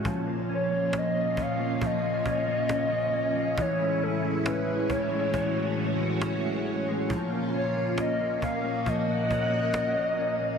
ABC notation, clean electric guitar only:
X:1
M:4/4
L:1/16
Q:1/4=68
K:A#phr
V:1 name="Clean electric guitar"
E, A, C A, C A, C A, E, A, C A, C A, C A, | =E, G, C G, C G, C G, E, G, C G, C G, C G, | E, A, C A, C A, C A, E, A, C A, C A, C A, |]